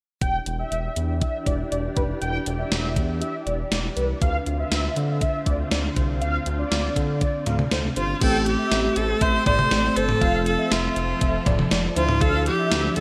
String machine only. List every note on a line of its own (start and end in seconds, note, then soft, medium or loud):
0.22 4.18 E3 medium
0.22 4.18 D4 medium
0.22 4.18 G4 medium
4.21 8.17 D3 medium
4.21 8.18 C4 medium
4.21 8.18 F4 medium
8.21 10.20 A3 medium
8.21 10.19 C4 medium
8.21 10.19 G4 medium
10.21 13.00 F3 medium
10.21 11.95 C4 medium
10.21 11.95 A4 loud
11.97 13.00 D4 medium
11.97 13.00 E4 medium